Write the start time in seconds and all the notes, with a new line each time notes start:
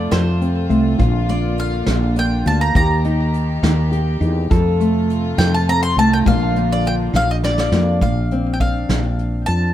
Already playing: C3 A3 F4 A4 D5
0.11 F2 F3 C5, snare, closed hi-hat
0.41 C4, closed hi-hat
0.69 C2 A3, closed hi-hat
0.98 A#1 A#2 D3 A#3 F4, kick, closed hi-hat
1.29 A#3 D5, closed hi-hat
1.58 F5, closed hi-hat
1.86 A#1 F3, snare, closed hi-hat
2.16 D4 G5, closed hi-hat
2.46 D2 A#3 A5, closed hi-hat
2.61 A#5
2.74 D#2 D#3 G4 A#5, kick, closed hi-hat
3.04 D#4, closed hi-hat
3.34 closed hi-hat
3.63 D#2 A#3, snare, closed hi-hat
3.92 G4, closed hi-hat
4.21 E2 D#4, closed hi-hat
4.50 F2 C3 A3 F4 A4, kick, closed hi-hat
4.80 A3, closed hi-hat
5.10 closed hi-hat
5.38 F2 F3 G5, snare, closed hi-hat
5.54 A5
5.69 C4 A#5, closed hi-hat
5.83 C6
5.96 C2 A3 A5, closed hi-hat
6.13 G5
6.24 A#1 A#2 D3 F3 A#3 D4 F5, kick, closed hi-hat
6.29 F4
6.56 A#3, closed hi-hat
6.72 D5
6.85 G5, closed hi-hat
7.13 A#1 F3 F5, snare
7.31 D#5
7.43 D4 D5, snare
7.58 D5, snare
7.72 F2 A#3, snare
8.01 A#1 A#2 F5, kick, closed hi-hat
8.31 C4, closed hi-hat
8.54 G5
8.60 D4 F5, kick, closed hi-hat
8.89 A#1 F3, snare, closed hi-hat
9.19 closed hi-hat
9.46 F2 A5, closed hi-hat